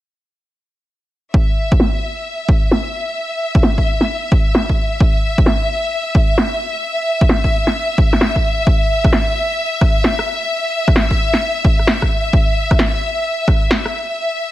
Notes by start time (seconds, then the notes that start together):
1.34 E5, kick
1.72 kick
1.80 snare
2.49 kick
2.71 snare
3.55 kick
3.63 snare
3.78 kick
4.01 snare
4.32 kick
4.55 snare
4.69 kick
5.00 kick
5.38 kick
5.46 snare
6.15 kick
6.38 snare
7.21 kick
7.29 snare
7.44 kick
7.67 snare
7.98 kick
8.13 snare
8.21 snare
8.36 kick
8.67 kick
9.04 kick, cross-stick
9.13 snare
9.81 kick, cross-stick
10.04 snare
10.19 cross-stick
10.88 kick, cross-stick
10.96 snare
11.11 kick
11.34 snare
11.65 kick
11.79 cross-stick
11.87 snare
12.02 kick, cross-stick
12.33 kick
12.71 kick, cross-stick
12.79 snare
13.48 kick, cross-stick
13.71 snare
13.86 cross-stick